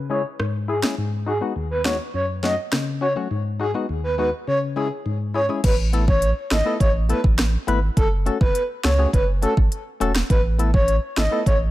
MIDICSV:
0, 0, Header, 1, 5, 480
1, 0, Start_track
1, 0, Tempo, 582524
1, 806, Time_signature, 4, 2, 24, 8
1, 9648, End_track
2, 0, Start_track
2, 0, Title_t, "Soft synth lead"
2, 0, Program_c, 0, 80
2, 87, Note_on_c, 0, 73, 72
2, 179, Note_off_c, 0, 73, 0
2, 566, Note_on_c, 0, 68, 82
2, 659, Note_off_c, 0, 68, 0
2, 1047, Note_on_c, 0, 68, 84
2, 1140, Note_off_c, 0, 68, 0
2, 1407, Note_on_c, 0, 71, 81
2, 1500, Note_off_c, 0, 71, 0
2, 1525, Note_on_c, 0, 73, 74
2, 1618, Note_off_c, 0, 73, 0
2, 1766, Note_on_c, 0, 73, 82
2, 1859, Note_off_c, 0, 73, 0
2, 2005, Note_on_c, 0, 75, 82
2, 2098, Note_off_c, 0, 75, 0
2, 2484, Note_on_c, 0, 73, 75
2, 2577, Note_off_c, 0, 73, 0
2, 2966, Note_on_c, 0, 68, 78
2, 3059, Note_off_c, 0, 68, 0
2, 3327, Note_on_c, 0, 71, 68
2, 3419, Note_off_c, 0, 71, 0
2, 3448, Note_on_c, 0, 71, 70
2, 3540, Note_off_c, 0, 71, 0
2, 3687, Note_on_c, 0, 73, 83
2, 3779, Note_off_c, 0, 73, 0
2, 3926, Note_on_c, 0, 68, 72
2, 4019, Note_off_c, 0, 68, 0
2, 4406, Note_on_c, 0, 73, 81
2, 4499, Note_off_c, 0, 73, 0
2, 4645, Note_on_c, 0, 71, 105
2, 4738, Note_off_c, 0, 71, 0
2, 5007, Note_on_c, 0, 73, 74
2, 5192, Note_off_c, 0, 73, 0
2, 5365, Note_on_c, 0, 75, 82
2, 5551, Note_off_c, 0, 75, 0
2, 5606, Note_on_c, 0, 73, 82
2, 5699, Note_off_c, 0, 73, 0
2, 5847, Note_on_c, 0, 71, 81
2, 5940, Note_off_c, 0, 71, 0
2, 6565, Note_on_c, 0, 69, 103
2, 6658, Note_off_c, 0, 69, 0
2, 6927, Note_on_c, 0, 71, 78
2, 7112, Note_off_c, 0, 71, 0
2, 7285, Note_on_c, 0, 73, 79
2, 7471, Note_off_c, 0, 73, 0
2, 7525, Note_on_c, 0, 71, 82
2, 7618, Note_off_c, 0, 71, 0
2, 7765, Note_on_c, 0, 69, 82
2, 7858, Note_off_c, 0, 69, 0
2, 8486, Note_on_c, 0, 71, 109
2, 8579, Note_off_c, 0, 71, 0
2, 8846, Note_on_c, 0, 73, 73
2, 9031, Note_off_c, 0, 73, 0
2, 9206, Note_on_c, 0, 75, 83
2, 9392, Note_off_c, 0, 75, 0
2, 9448, Note_on_c, 0, 73, 78
2, 9540, Note_off_c, 0, 73, 0
2, 9648, End_track
3, 0, Start_track
3, 0, Title_t, "Synth stab"
3, 0, Program_c, 1, 62
3, 0, Note_on_c, 1, 49, 71
3, 79, Note_on_c, 1, 56, 73
3, 82, Note_on_c, 1, 61, 69
3, 86, Note_on_c, 1, 64, 65
3, 89, Note_on_c, 1, 68, 79
3, 178, Note_off_c, 1, 56, 0
3, 180, Note_off_c, 1, 61, 0
3, 182, Note_off_c, 1, 64, 0
3, 184, Note_off_c, 1, 68, 0
3, 203, Note_off_c, 1, 49, 0
3, 325, Note_on_c, 1, 44, 86
3, 562, Note_on_c, 1, 64, 73
3, 571, Note_on_c, 1, 68, 84
3, 612, Note_off_c, 1, 64, 0
3, 617, Note_off_c, 1, 68, 0
3, 683, Note_off_c, 1, 44, 0
3, 683, Note_on_c, 1, 56, 66
3, 687, Note_on_c, 1, 61, 64
3, 689, Note_on_c, 1, 64, 60
3, 692, Note_on_c, 1, 68, 74
3, 781, Note_off_c, 1, 56, 0
3, 782, Note_off_c, 1, 61, 0
3, 784, Note_off_c, 1, 64, 0
3, 785, Note_off_c, 1, 68, 0
3, 807, Note_on_c, 1, 44, 88
3, 1041, Note_on_c, 1, 63, 72
3, 1051, Note_on_c, 1, 66, 78
3, 1092, Note_off_c, 1, 63, 0
3, 1096, Note_off_c, 1, 66, 0
3, 1161, Note_on_c, 1, 56, 69
3, 1164, Note_off_c, 1, 44, 0
3, 1165, Note_on_c, 1, 59, 60
3, 1167, Note_on_c, 1, 63, 62
3, 1170, Note_on_c, 1, 66, 72
3, 1260, Note_off_c, 1, 56, 0
3, 1261, Note_off_c, 1, 59, 0
3, 1263, Note_off_c, 1, 63, 0
3, 1264, Note_off_c, 1, 66, 0
3, 1284, Note_on_c, 1, 39, 71
3, 1520, Note_on_c, 1, 56, 71
3, 1522, Note_on_c, 1, 59, 64
3, 1525, Note_on_c, 1, 63, 66
3, 1529, Note_on_c, 1, 66, 77
3, 1619, Note_off_c, 1, 56, 0
3, 1620, Note_off_c, 1, 59, 0
3, 1622, Note_off_c, 1, 63, 0
3, 1624, Note_off_c, 1, 66, 0
3, 1642, Note_off_c, 1, 39, 0
3, 1763, Note_on_c, 1, 42, 72
3, 2001, Note_on_c, 1, 54, 75
3, 2004, Note_on_c, 1, 57, 64
3, 2008, Note_on_c, 1, 61, 64
3, 2010, Note_on_c, 1, 66, 80
3, 2100, Note_off_c, 1, 54, 0
3, 2101, Note_off_c, 1, 57, 0
3, 2103, Note_off_c, 1, 61, 0
3, 2104, Note_off_c, 1, 66, 0
3, 2122, Note_off_c, 1, 42, 0
3, 2246, Note_on_c, 1, 49, 84
3, 2481, Note_on_c, 1, 61, 73
3, 2490, Note_on_c, 1, 66, 80
3, 2532, Note_off_c, 1, 61, 0
3, 2536, Note_off_c, 1, 66, 0
3, 2602, Note_on_c, 1, 54, 71
3, 2603, Note_off_c, 1, 49, 0
3, 2605, Note_on_c, 1, 57, 63
3, 2608, Note_on_c, 1, 61, 61
3, 2611, Note_on_c, 1, 66, 77
3, 2700, Note_off_c, 1, 54, 0
3, 2701, Note_off_c, 1, 57, 0
3, 2703, Note_off_c, 1, 61, 0
3, 2704, Note_off_c, 1, 66, 0
3, 2727, Note_on_c, 1, 44, 88
3, 2963, Note_on_c, 1, 63, 68
3, 2972, Note_on_c, 1, 66, 80
3, 3013, Note_off_c, 1, 63, 0
3, 3017, Note_off_c, 1, 66, 0
3, 3083, Note_off_c, 1, 44, 0
3, 3084, Note_on_c, 1, 56, 69
3, 3086, Note_on_c, 1, 59, 64
3, 3090, Note_on_c, 1, 63, 64
3, 3092, Note_on_c, 1, 66, 74
3, 3181, Note_off_c, 1, 56, 0
3, 3182, Note_off_c, 1, 59, 0
3, 3184, Note_off_c, 1, 63, 0
3, 3185, Note_off_c, 1, 66, 0
3, 3207, Note_on_c, 1, 39, 74
3, 3444, Note_on_c, 1, 56, 71
3, 3447, Note_on_c, 1, 59, 66
3, 3450, Note_on_c, 1, 63, 64
3, 3453, Note_on_c, 1, 66, 83
3, 3541, Note_off_c, 1, 56, 0
3, 3543, Note_off_c, 1, 59, 0
3, 3544, Note_off_c, 1, 63, 0
3, 3546, Note_off_c, 1, 66, 0
3, 3564, Note_off_c, 1, 39, 0
3, 3687, Note_on_c, 1, 49, 74
3, 3923, Note_on_c, 1, 56, 74
3, 3926, Note_on_c, 1, 61, 63
3, 3928, Note_on_c, 1, 64, 67
3, 3932, Note_on_c, 1, 68, 78
3, 4020, Note_off_c, 1, 56, 0
3, 4022, Note_off_c, 1, 61, 0
3, 4023, Note_off_c, 1, 64, 0
3, 4025, Note_off_c, 1, 68, 0
3, 4044, Note_off_c, 1, 49, 0
3, 4166, Note_on_c, 1, 44, 85
3, 4403, Note_on_c, 1, 64, 76
3, 4412, Note_on_c, 1, 68, 82
3, 4452, Note_off_c, 1, 64, 0
3, 4457, Note_off_c, 1, 68, 0
3, 4523, Note_off_c, 1, 44, 0
3, 4523, Note_on_c, 1, 56, 70
3, 4525, Note_on_c, 1, 61, 66
3, 4528, Note_on_c, 1, 64, 63
3, 4531, Note_on_c, 1, 68, 75
3, 4620, Note_off_c, 1, 56, 0
3, 4622, Note_off_c, 1, 61, 0
3, 4623, Note_off_c, 1, 64, 0
3, 4624, Note_off_c, 1, 68, 0
3, 4884, Note_on_c, 1, 57, 73
3, 4887, Note_on_c, 1, 59, 68
3, 4890, Note_on_c, 1, 64, 68
3, 4893, Note_on_c, 1, 69, 80
3, 4981, Note_off_c, 1, 57, 0
3, 4982, Note_off_c, 1, 59, 0
3, 4984, Note_off_c, 1, 64, 0
3, 4985, Note_off_c, 1, 69, 0
3, 5363, Note_on_c, 1, 64, 71
3, 5371, Note_on_c, 1, 69, 81
3, 5412, Note_off_c, 1, 64, 0
3, 5417, Note_off_c, 1, 69, 0
3, 5482, Note_on_c, 1, 57, 71
3, 5485, Note_on_c, 1, 59, 66
3, 5488, Note_on_c, 1, 64, 65
3, 5491, Note_on_c, 1, 69, 79
3, 5580, Note_off_c, 1, 57, 0
3, 5582, Note_off_c, 1, 59, 0
3, 5583, Note_off_c, 1, 64, 0
3, 5584, Note_off_c, 1, 69, 0
3, 5842, Note_on_c, 1, 57, 73
3, 5845, Note_on_c, 1, 59, 67
3, 5848, Note_on_c, 1, 64, 66
3, 5851, Note_on_c, 1, 69, 80
3, 5940, Note_off_c, 1, 57, 0
3, 5942, Note_off_c, 1, 59, 0
3, 5943, Note_off_c, 1, 64, 0
3, 5945, Note_off_c, 1, 69, 0
3, 6322, Note_on_c, 1, 57, 87
3, 6325, Note_on_c, 1, 59, 79
3, 6328, Note_on_c, 1, 64, 81
3, 6331, Note_on_c, 1, 71, 98
3, 6420, Note_off_c, 1, 57, 0
3, 6422, Note_off_c, 1, 59, 0
3, 6423, Note_off_c, 1, 64, 0
3, 6425, Note_off_c, 1, 71, 0
3, 6804, Note_on_c, 1, 57, 71
3, 6806, Note_on_c, 1, 61, 65
3, 6809, Note_on_c, 1, 66, 66
3, 6812, Note_on_c, 1, 69, 77
3, 6901, Note_off_c, 1, 57, 0
3, 6902, Note_off_c, 1, 61, 0
3, 6903, Note_off_c, 1, 66, 0
3, 6905, Note_off_c, 1, 69, 0
3, 7283, Note_on_c, 1, 66, 70
3, 7293, Note_on_c, 1, 69, 77
3, 7333, Note_off_c, 1, 66, 0
3, 7337, Note_off_c, 1, 69, 0
3, 7402, Note_on_c, 1, 57, 71
3, 7405, Note_on_c, 1, 61, 63
3, 7407, Note_on_c, 1, 66, 64
3, 7411, Note_on_c, 1, 68, 76
3, 7500, Note_off_c, 1, 57, 0
3, 7502, Note_off_c, 1, 61, 0
3, 7503, Note_off_c, 1, 66, 0
3, 7504, Note_off_c, 1, 68, 0
3, 7762, Note_on_c, 1, 57, 74
3, 7766, Note_on_c, 1, 61, 66
3, 7768, Note_on_c, 1, 66, 65
3, 7772, Note_on_c, 1, 69, 82
3, 7860, Note_off_c, 1, 57, 0
3, 7862, Note_off_c, 1, 61, 0
3, 7863, Note_off_c, 1, 66, 0
3, 7865, Note_off_c, 1, 69, 0
3, 8242, Note_on_c, 1, 57, 89
3, 8245, Note_on_c, 1, 61, 82
3, 8249, Note_on_c, 1, 66, 81
3, 8252, Note_on_c, 1, 69, 100
3, 8340, Note_off_c, 1, 57, 0
3, 8342, Note_off_c, 1, 61, 0
3, 8343, Note_off_c, 1, 66, 0
3, 8345, Note_off_c, 1, 69, 0
3, 8722, Note_on_c, 1, 57, 71
3, 8726, Note_on_c, 1, 59, 66
3, 8729, Note_on_c, 1, 64, 68
3, 8732, Note_on_c, 1, 69, 77
3, 8820, Note_off_c, 1, 57, 0
3, 8822, Note_off_c, 1, 59, 0
3, 8823, Note_off_c, 1, 64, 0
3, 8825, Note_off_c, 1, 69, 0
3, 9201, Note_on_c, 1, 64, 74
3, 9211, Note_on_c, 1, 69, 78
3, 9252, Note_off_c, 1, 64, 0
3, 9256, Note_off_c, 1, 69, 0
3, 9322, Note_on_c, 1, 57, 70
3, 9324, Note_on_c, 1, 59, 64
3, 9328, Note_on_c, 1, 64, 65
3, 9331, Note_on_c, 1, 69, 76
3, 9420, Note_off_c, 1, 57, 0
3, 9421, Note_off_c, 1, 59, 0
3, 9423, Note_off_c, 1, 64, 0
3, 9425, Note_off_c, 1, 69, 0
3, 9648, End_track
4, 0, Start_track
4, 0, Title_t, "Sub bass"
4, 0, Program_c, 2, 38
4, 4646, Note_on_c, 2, 33, 105
4, 5216, Note_off_c, 2, 33, 0
4, 5367, Note_on_c, 2, 32, 101
4, 5457, Note_off_c, 2, 32, 0
4, 5606, Note_on_c, 2, 33, 111
4, 5877, Note_off_c, 2, 33, 0
4, 5967, Note_on_c, 2, 33, 94
4, 6237, Note_off_c, 2, 33, 0
4, 6327, Note_on_c, 2, 32, 86
4, 6507, Note_off_c, 2, 32, 0
4, 6566, Note_on_c, 2, 30, 104
4, 6837, Note_off_c, 2, 30, 0
4, 6929, Note_on_c, 2, 30, 93
4, 7018, Note_off_c, 2, 30, 0
4, 7288, Note_on_c, 2, 37, 101
4, 7468, Note_off_c, 2, 37, 0
4, 7526, Note_on_c, 2, 30, 107
4, 7796, Note_off_c, 2, 30, 0
4, 7887, Note_on_c, 2, 32, 92
4, 7977, Note_off_c, 2, 32, 0
4, 8248, Note_on_c, 2, 28, 86
4, 8428, Note_off_c, 2, 28, 0
4, 8487, Note_on_c, 2, 33, 114
4, 9057, Note_off_c, 2, 33, 0
4, 9206, Note_on_c, 2, 32, 98
4, 9296, Note_off_c, 2, 32, 0
4, 9446, Note_on_c, 2, 33, 106
4, 9648, Note_off_c, 2, 33, 0
4, 9648, End_track
5, 0, Start_track
5, 0, Title_t, "Drums"
5, 326, Note_on_c, 9, 37, 99
5, 408, Note_off_c, 9, 37, 0
5, 684, Note_on_c, 9, 37, 80
5, 687, Note_on_c, 9, 38, 100
5, 766, Note_off_c, 9, 37, 0
5, 769, Note_off_c, 9, 38, 0
5, 1524, Note_on_c, 9, 37, 84
5, 1527, Note_on_c, 9, 38, 109
5, 1607, Note_off_c, 9, 37, 0
5, 1609, Note_off_c, 9, 38, 0
5, 2008, Note_on_c, 9, 38, 61
5, 2091, Note_off_c, 9, 38, 0
5, 2243, Note_on_c, 9, 37, 98
5, 2246, Note_off_c, 9, 37, 0
5, 2246, Note_on_c, 9, 37, 100
5, 2246, Note_on_c, 9, 38, 114
5, 2328, Note_off_c, 9, 37, 0
5, 2328, Note_off_c, 9, 38, 0
5, 4646, Note_on_c, 9, 36, 100
5, 4646, Note_on_c, 9, 42, 62
5, 4646, Note_on_c, 9, 49, 82
5, 4729, Note_off_c, 9, 36, 0
5, 4729, Note_off_c, 9, 42, 0
5, 4729, Note_off_c, 9, 49, 0
5, 4889, Note_on_c, 9, 42, 53
5, 4971, Note_off_c, 9, 42, 0
5, 5009, Note_on_c, 9, 36, 101
5, 5091, Note_off_c, 9, 36, 0
5, 5125, Note_on_c, 9, 42, 67
5, 5207, Note_off_c, 9, 42, 0
5, 5364, Note_on_c, 9, 37, 90
5, 5367, Note_on_c, 9, 38, 118
5, 5367, Note_on_c, 9, 42, 49
5, 5446, Note_off_c, 9, 37, 0
5, 5449, Note_off_c, 9, 38, 0
5, 5450, Note_off_c, 9, 42, 0
5, 5606, Note_on_c, 9, 36, 97
5, 5608, Note_on_c, 9, 42, 69
5, 5688, Note_off_c, 9, 36, 0
5, 5690, Note_off_c, 9, 42, 0
5, 5846, Note_on_c, 9, 42, 53
5, 5928, Note_off_c, 9, 42, 0
5, 5966, Note_on_c, 9, 36, 104
5, 6049, Note_off_c, 9, 36, 0
5, 6084, Note_on_c, 9, 37, 107
5, 6087, Note_on_c, 9, 38, 117
5, 6088, Note_on_c, 9, 42, 75
5, 6166, Note_off_c, 9, 37, 0
5, 6169, Note_off_c, 9, 38, 0
5, 6170, Note_off_c, 9, 42, 0
5, 6329, Note_on_c, 9, 42, 56
5, 6411, Note_off_c, 9, 42, 0
5, 6566, Note_on_c, 9, 36, 102
5, 6567, Note_on_c, 9, 42, 65
5, 6649, Note_off_c, 9, 36, 0
5, 6649, Note_off_c, 9, 42, 0
5, 6810, Note_on_c, 9, 42, 57
5, 6892, Note_off_c, 9, 42, 0
5, 6929, Note_on_c, 9, 36, 102
5, 7011, Note_off_c, 9, 36, 0
5, 7045, Note_on_c, 9, 42, 72
5, 7128, Note_off_c, 9, 42, 0
5, 7284, Note_on_c, 9, 37, 88
5, 7287, Note_on_c, 9, 38, 112
5, 7288, Note_on_c, 9, 42, 48
5, 7367, Note_off_c, 9, 37, 0
5, 7370, Note_off_c, 9, 38, 0
5, 7370, Note_off_c, 9, 42, 0
5, 7526, Note_on_c, 9, 36, 96
5, 7529, Note_on_c, 9, 42, 72
5, 7609, Note_off_c, 9, 36, 0
5, 7612, Note_off_c, 9, 42, 0
5, 7766, Note_on_c, 9, 42, 53
5, 7849, Note_off_c, 9, 42, 0
5, 7887, Note_on_c, 9, 36, 102
5, 7969, Note_off_c, 9, 36, 0
5, 8008, Note_on_c, 9, 42, 73
5, 8090, Note_off_c, 9, 42, 0
5, 8249, Note_on_c, 9, 42, 55
5, 8331, Note_off_c, 9, 42, 0
5, 8365, Note_on_c, 9, 37, 82
5, 8367, Note_on_c, 9, 38, 101
5, 8447, Note_off_c, 9, 37, 0
5, 8450, Note_off_c, 9, 38, 0
5, 8487, Note_on_c, 9, 36, 98
5, 8487, Note_on_c, 9, 42, 62
5, 8569, Note_off_c, 9, 36, 0
5, 8569, Note_off_c, 9, 42, 0
5, 8729, Note_on_c, 9, 42, 54
5, 8811, Note_off_c, 9, 42, 0
5, 8848, Note_on_c, 9, 36, 99
5, 8931, Note_off_c, 9, 36, 0
5, 8965, Note_on_c, 9, 42, 67
5, 9047, Note_off_c, 9, 42, 0
5, 9204, Note_on_c, 9, 37, 88
5, 9206, Note_on_c, 9, 38, 113
5, 9207, Note_on_c, 9, 42, 48
5, 9286, Note_off_c, 9, 37, 0
5, 9289, Note_off_c, 9, 38, 0
5, 9289, Note_off_c, 9, 42, 0
5, 9446, Note_on_c, 9, 36, 92
5, 9448, Note_on_c, 9, 42, 67
5, 9528, Note_off_c, 9, 36, 0
5, 9530, Note_off_c, 9, 42, 0
5, 9648, End_track
0, 0, End_of_file